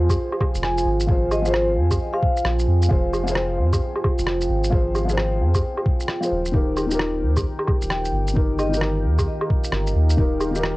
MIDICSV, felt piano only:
0, 0, Header, 1, 2, 480
1, 0, Start_track
1, 0, Key_signature, -4, "minor"
1, 0, Tempo, 454545
1, 1150, Time_signature, 4, 2, 24, 8
1, 11371, End_track
2, 0, Start_track
2, 0, Title_t, "Felt piano"
2, 0, Program_c, 0, 0
2, 0, Control_c, 0, 64, 127
2, 0, Note_on_c, 0, 53, 86
2, 0, Note_on_c, 0, 65, 80
2, 0, Note_on_c, 0, 68, 83
2, 0, Note_on_c, 0, 72, 99
2, 1109, Note_off_c, 0, 53, 0
2, 1125, Note_off_c, 0, 65, 0
2, 1128, Note_on_c, 0, 53, 86
2, 1138, Note_off_c, 0, 68, 0
2, 1141, Note_on_c, 0, 65, 79
2, 1152, Note_off_c, 0, 72, 0
2, 1156, Note_on_c, 0, 68, 77
2, 1171, Note_on_c, 0, 72, 96
2, 1485, Note_off_c, 0, 53, 0
2, 1501, Note_off_c, 0, 65, 0
2, 1501, Note_on_c, 0, 53, 91
2, 1508, Note_off_c, 0, 68, 0
2, 1515, Note_off_c, 0, 72, 0
2, 1529, Note_on_c, 0, 65, 82
2, 1557, Note_on_c, 0, 68, 81
2, 1585, Note_on_c, 0, 72, 104
2, 3029, Note_off_c, 0, 53, 0
2, 3039, Note_off_c, 0, 65, 0
2, 3047, Note_on_c, 0, 53, 87
2, 3054, Note_off_c, 0, 68, 0
2, 3055, Note_on_c, 0, 65, 81
2, 3070, Note_off_c, 0, 72, 0
2, 3070, Note_on_c, 0, 68, 81
2, 3086, Note_on_c, 0, 72, 96
2, 3402, Note_off_c, 0, 53, 0
2, 3418, Note_off_c, 0, 65, 0
2, 3418, Note_on_c, 0, 53, 95
2, 3425, Note_off_c, 0, 68, 0
2, 3433, Note_off_c, 0, 72, 0
2, 3448, Note_on_c, 0, 65, 84
2, 3476, Note_on_c, 0, 68, 84
2, 3500, Note_on_c, 0, 72, 101
2, 4947, Note_off_c, 0, 53, 0
2, 4960, Note_off_c, 0, 65, 0
2, 4965, Note_on_c, 0, 53, 88
2, 4974, Note_off_c, 0, 68, 0
2, 4976, Note_on_c, 0, 65, 80
2, 4988, Note_off_c, 0, 72, 0
2, 4990, Note_on_c, 0, 68, 85
2, 5005, Note_on_c, 0, 72, 98
2, 5317, Note_off_c, 0, 53, 0
2, 5333, Note_on_c, 0, 53, 88
2, 5338, Note_off_c, 0, 65, 0
2, 5345, Note_off_c, 0, 68, 0
2, 5352, Note_off_c, 0, 72, 0
2, 5360, Note_on_c, 0, 65, 84
2, 5390, Note_on_c, 0, 68, 85
2, 5419, Note_on_c, 0, 72, 98
2, 6527, Note_off_c, 0, 53, 0
2, 6541, Note_off_c, 0, 65, 0
2, 6552, Note_on_c, 0, 53, 71
2, 6555, Note_off_c, 0, 68, 0
2, 6567, Note_on_c, 0, 65, 63
2, 6570, Note_off_c, 0, 72, 0
2, 6586, Note_on_c, 0, 68, 66
2, 6597, Note_on_c, 0, 72, 76
2, 6874, Note_off_c, 0, 53, 0
2, 6882, Note_off_c, 0, 65, 0
2, 6882, Note_on_c, 0, 51, 89
2, 6891, Note_off_c, 0, 68, 0
2, 6893, Note_on_c, 0, 63, 80
2, 6897, Note_off_c, 0, 72, 0
2, 6907, Note_on_c, 0, 67, 83
2, 6925, Control_c, 0, 64, 0
2, 6925, Note_on_c, 0, 70, 98
2, 7102, Control_c, 0, 64, 127
2, 7236, Note_off_c, 0, 51, 0
2, 7252, Note_on_c, 0, 51, 90
2, 7256, Note_off_c, 0, 63, 0
2, 7264, Note_off_c, 0, 67, 0
2, 7272, Note_off_c, 0, 70, 0
2, 7275, Note_on_c, 0, 63, 82
2, 7306, Note_on_c, 0, 67, 82
2, 7333, Note_on_c, 0, 70, 101
2, 8782, Note_off_c, 0, 51, 0
2, 8796, Note_off_c, 0, 63, 0
2, 8798, Note_on_c, 0, 51, 86
2, 8810, Note_off_c, 0, 67, 0
2, 8813, Note_on_c, 0, 63, 83
2, 8825, Note_off_c, 0, 70, 0
2, 8826, Note_on_c, 0, 67, 80
2, 8841, Note_on_c, 0, 70, 100
2, 9157, Note_off_c, 0, 51, 0
2, 9172, Note_on_c, 0, 51, 92
2, 9177, Note_off_c, 0, 63, 0
2, 9183, Note_off_c, 0, 67, 0
2, 9191, Note_off_c, 0, 70, 0
2, 9205, Note_on_c, 0, 63, 86
2, 9231, Note_on_c, 0, 67, 82
2, 9258, Note_on_c, 0, 70, 100
2, 10704, Note_off_c, 0, 51, 0
2, 10721, Note_off_c, 0, 63, 0
2, 10734, Note_off_c, 0, 67, 0
2, 10737, Note_on_c, 0, 51, 91
2, 10744, Note_on_c, 0, 63, 85
2, 10747, Note_off_c, 0, 70, 0
2, 10764, Note_on_c, 0, 67, 85
2, 10774, Note_on_c, 0, 70, 104
2, 11083, Note_off_c, 0, 51, 0
2, 11098, Note_on_c, 0, 51, 93
2, 11102, Note_off_c, 0, 63, 0
2, 11112, Note_off_c, 0, 67, 0
2, 11117, Note_off_c, 0, 70, 0
2, 11128, Note_on_c, 0, 63, 88
2, 11150, Note_on_c, 0, 67, 90
2, 11182, Note_on_c, 0, 70, 101
2, 11371, Note_off_c, 0, 51, 0
2, 11371, Note_off_c, 0, 63, 0
2, 11371, Note_off_c, 0, 67, 0
2, 11371, Note_off_c, 0, 70, 0
2, 11371, End_track
0, 0, End_of_file